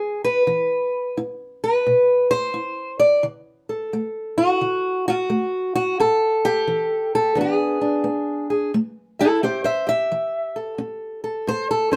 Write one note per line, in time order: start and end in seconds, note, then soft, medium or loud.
0.00 0.44 B3 medium
0.00 0.97 E4 soft
0.00 0.24 G#4 medium
0.24 1.18 B4 medium
0.47 1.12 E3 medium
1.17 1.81 E4 medium
1.64 2.30 B4 medium
1.86 2.50 B2 medium
2.31 2.99 C5 medium
2.54 3.18 E4 medium
3.00 3.24 D5 medium
3.23 3.87 D3 medium
3.69 5.96 A4 soft
3.93 4.57 A3 medium
4.38 5.07 F#4 medium
4.61 5.25 D3 medium
5.08 5.12 F4 medium
5.08 5.74 F#4 medium
5.30 5.94 A3 medium
5.75 5.99 F#4 medium
6.00 6.63 A2 medium
6.00 7.12 A4 loud
6.45 7.37 G4 loud
6.68 7.31 E3 medium
7.15 7.38 A4 medium
7.35 7.99 E3 medium
7.35 8.03 B3 soft
7.35 7.80 D4 soft
7.41 8.49 G#4 medium
7.81 8.71 D4 soft
8.04 8.68 B3 medium
8.50 8.71 G#4 soft
8.74 9.37 A3 medium
9.19 9.43 E4 medium
9.19 9.42 A4 medium
9.19 9.65 E5 soft
9.43 10.06 C#4 medium
9.43 9.65 G4 medium
9.43 9.63 C5 medium
9.64 9.87 C5 medium
9.64 9.88 E5 medium
9.87 11.50 G4 soft
9.87 10.56 E5 medium
10.12 10.74 E3 medium
10.56 11.23 A4 soft
10.78 11.41 C#4 medium
11.24 11.71 A4 soft
11.47 11.96 A2 medium
11.47 11.70 C5 loud
11.71 11.92 A4 medium
11.92 11.96 C#4 soft
11.92 11.96 C5 medium